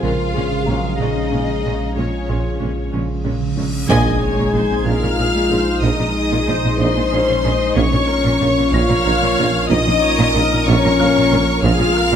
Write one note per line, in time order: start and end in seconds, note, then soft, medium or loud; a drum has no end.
0.00 3.86 A#1 medium
0.00 0.11 A#1 medium
0.00 0.12 A#2 medium
0.00 0.12 C#3 medium
0.00 3.86 G#3 medium
0.00 0.11 G#3 medium
0.00 3.90 C#4 medium
0.00 0.11 C#4 medium
0.00 0.98 F4 medium
0.00 3.86 G#4 medium
0.00 0.35 A#4 medium
0.00 1.59 C5 soft
0.00 0.97 F5 medium
0.00 3.86 F5 medium
0.00 1.60 C6 medium
0.20 0.29 F3 soft
0.34 0.43 A#1 medium
0.34 0.44 A#2 medium
0.34 0.44 G#3 medium
0.34 0.44 C#4 soft
0.34 0.66 G#4 medium
0.52 0.61 C#3 medium
0.66 0.76 A#1 medium
0.66 0.75 A#2 medium
0.66 0.99 F#3 medium
0.66 0.77 G#3 soft
0.66 0.76 C#4 medium
0.66 0.77 C#4 medium
0.66 2.56 A#4 soft
0.66 2.56 A#5 soft
0.83 0.93 F3 medium
0.98 1.08 A#1 medium
0.98 1.08 A#2 medium
0.98 1.08 C#3 medium
0.98 1.09 G#3 soft
0.98 1.09 C#4 soft
0.98 1.94 D#4 medium
0.98 1.95 G#4 medium
0.98 1.96 D#5 medium
1.15 1.25 C#4 medium
1.32 1.40 A#1 soft
1.32 1.40 A#2 medium
1.32 1.40 G#3 soft
1.32 1.41 C#4 medium
1.32 1.40 C#4 soft
1.48 1.57 C#3 medium
1.63 1.72 A#1 soft
1.63 1.72 A#2 soft
1.63 1.73 G#3 soft
1.63 1.73 C#4 medium
1.63 1.73 C#4 soft
1.95 2.04 A#1 medium
1.95 2.05 A#2 medium
1.95 2.05 C#3 medium
1.95 2.05 G#3 soft
1.95 2.05 C#4 soft
1.95 2.93 C#4 medium
1.95 3.38 F4 soft
1.95 2.91 C#5 medium
1.95 reverse cymbal soft
2.12 2.22 F3 medium
2.28 2.36 A#1 soft
2.28 2.37 A#2 soft
2.28 2.36 G#3 soft
2.28 2.36 C#4 soft
2.28 3.86 C#5 soft
2.28 3.86 C6 soft
2.45 2.54 C#3 medium
2.60 2.68 A#1 soft
2.60 2.70 A#2 medium
2.60 2.68 G#3 soft
2.60 2.68 C#4 soft
2.60 2.70 C#4 medium
2.76 2.86 F3 medium
2.92 3.00 A#1 soft
2.92 3.02 A#2 medium
2.92 3.02 C#3 medium
2.92 3.01 G#3 soft
2.92 3.00 C#4 soft
3.09 3.18 C#4 medium
3.24 3.32 A#1 soft
3.24 3.34 A#2 medium
3.24 3.33 G#3 soft
3.24 3.34 C#4 medium
3.24 3.33 C#4 soft
3.40 3.50 C#3 medium
3.57 3.65 A#1 soft
3.57 3.66 A#2 soft
3.57 3.66 G#3 soft
3.57 3.67 C#4 medium
3.57 3.65 C#4 soft
3.88 4.04 A#1 loud
3.88 7.73 A#1 medium
3.88 4.04 A#1 loud
3.88 4.05 A#2 loud
3.88 3.99 G#3 loud
3.88 7.73 G#3 medium
3.88 7.73 D#4 medium
3.88 4.82 G#4 medium
3.88 7.73 G#4 medium
3.88 4.20 D#5 loud
3.88 4.82 G#5 loud
3.88 4.82 G#6 medium
3.88 impact medium
4.05 4.13 A#2 medium
4.05 4.15 C4 medium
4.22 4.54 C#5 medium
4.37 4.45 A#2 medium
4.37 4.47 G#3 medium
4.54 4.60 A#1 medium
4.54 4.61 A#2 soft
4.54 4.63 G#4 medium
4.54 4.86 C5 medium
4.70 4.77 A#2 medium
4.70 4.80 C4 medium
4.85 4.92 A#1 medium
4.85 4.93 A#1 medium
4.85 4.93 A#2 medium
4.85 4.96 G#3 medium
4.85 5.83 F4 medium
4.85 5.18 A#4 medium
4.85 5.83 F5 medium
4.85 5.83 F6 loud
4.85 6.75 G#6 soft
5.03 5.09 A#2 medium
5.03 5.12 G#4 medium
5.18 5.25 A#1 soft
5.18 5.25 A#2 medium
5.18 5.28 G#4 medium
5.18 5.51 G#4 medium
5.35 5.41 A#2 medium
5.35 5.45 G#3 medium
5.50 5.56 A#1 soft
5.50 5.56 A#1 medium
5.50 5.58 A#2 medium
5.50 5.61 G#4 medium
5.50 5.83 C5 medium
5.82 5.88 A#1 medium
5.82 5.89 A#1 medium
5.82 5.89 A#2 medium
5.82 5.92 G#3 loud
5.82 6.78 D#4 medium
5.82 6.16 A#4 medium
5.82 6.78 D#5 medium
5.82 6.80 D#6 medium
5.99 6.06 A#2 medium
5.99 6.09 C4 medium
6.16 6.47 G#4 medium
6.31 6.38 A#2 medium
6.31 6.41 G#3 medium
6.47 6.54 A#1 medium
6.47 6.54 A#2 medium
6.47 6.57 G#4 medium
6.47 6.80 C5 medium
6.63 6.70 A#2 medium
6.63 6.73 C4 medium
6.78 6.85 A#1 medium
6.78 6.86 A#1 medium
6.78 6.86 A#2 medium
6.78 6.89 G#3 medium
6.78 7.76 C5 medium
6.78 7.77 C5 medium
6.78 7.12 D#5 medium
6.78 7.76 C6 medium
6.96 7.03 A#2 medium
6.96 7.06 G#4 medium
7.11 7.18 A#1 medium
7.11 7.19 A#1 medium
7.11 7.18 A#2 medium
7.11 7.45 C#4 medium
7.11 7.22 G#4 medium
7.28 7.35 A#2 medium
7.28 7.38 G#3 medium
7.44 7.51 A#1 medium
7.44 7.51 A#2 medium
7.44 7.54 G#4 medium
7.44 7.77 D#5 medium
7.76 11.59 A#1 medium
7.76 7.83 A#1 medium
7.76 7.83 A#2 medium
7.76 11.62 F3 medium
7.76 7.87 A#3 medium
7.76 8.72 C#4 medium
7.76 11.64 C#4 medium
7.76 11.61 F4 medium
7.76 11.65 A#4 medium
7.76 8.09 C#5 medium
7.76 8.72 C#5 medium
7.76 8.71 C#6 loud
7.93 7.99 A#2 medium
7.93 8.03 C#4 medium
8.09 8.41 A#4 medium
8.25 8.31 A#2 medium
8.25 8.35 A#3 loud
8.41 8.47 A#1 medium
8.41 8.48 A#1 medium
8.41 8.48 A#2 medium
8.41 8.51 A#4 medium
8.41 8.73 C#5 medium
8.58 8.64 A#2 medium
8.58 8.67 C#4 medium
8.73 8.80 A#1 loud
8.73 8.80 A#1 medium
8.73 8.80 A#2 loud
8.73 8.83 A#3 medium
8.73 9.71 F4 medium
8.73 9.71 C#5 loud
8.73 9.71 F5 loud
8.73 9.68 F6 loud
8.73 10.63 A#6 medium
8.89 8.96 A#2 medium
8.89 8.99 A#4 medium
9.05 9.12 A#1 medium
9.05 9.13 A#1 medium
9.05 9.13 A#2 medium
9.05 9.15 A#4 medium
9.21 9.28 A#2 medium
9.21 9.31 A#3 loud
9.37 9.44 A#1 medium
9.37 9.45 A#1 medium
9.37 9.45 A#2 medium
9.37 9.47 A#4 medium
9.70 9.76 A#1 medium
9.70 9.77 A#1 loud
9.70 9.77 A#2 medium
9.70 9.79 A#3 loud
9.70 10.65 D#4 medium
9.70 10.02 D#5 medium
9.70 10.65 D#5 loud
9.70 10.65 D#6 loud
9.86 9.93 A#2 medium
9.86 9.96 C#4 medium
10.03 10.35 C#5 loud
10.18 10.25 A#2 loud
10.18 10.28 A#3 loud
10.34 10.41 A#1 medium
10.34 10.42 A#1 medium
10.34 10.42 A#2 medium
10.34 11.61 A#4 loud
10.34 10.45 A#4 medium
10.51 10.58 A#2 medium
10.51 10.61 C#4 medium
10.66 10.73 A#1 medium
10.66 10.74 A#1 loud
10.66 10.74 A#2 loud
10.66 10.77 A#3 loud
10.66 11.46 C#4 loud
10.66 11.64 C#5 loud
10.66 11.63 C#6 loud
10.84 10.91 A#2 medium
10.84 10.93 A#4 medium
10.99 11.06 A#1 medium
10.99 11.07 A#2 medium
10.99 11.09 A#4 medium
10.99 12.16 F5 medium
10.99 11.95 F6 medium
11.16 11.23 A#2 loud
11.16 11.25 A#3 loud
11.31 11.38 A#1 medium
11.31 11.39 A#2 medium
11.31 11.41 A#4 medium
11.62 11.70 A#1 loud
11.62 12.16 A#1 medium
11.62 11.71 A#1 loud
11.62 11.71 A#2 loud
11.62 11.73 F3 loud
11.62 12.16 F3 medium
11.62 12.16 C4 medium
11.62 12.16 F4 medium
11.62 12.16 F4 loud
11.62 12.16 G#4 medium
11.62 11.95 G#4 medium
11.62 12.16 F5 loud
11.62 12.16 F6 loud
11.80 11.86 A#2 medium
11.80 11.90 G#3 medium
11.96 12.16 A#4 medium
11.96 12.16 F6 medium
12.11 12.16 A#2 loud
12.11 12.16 F3 loud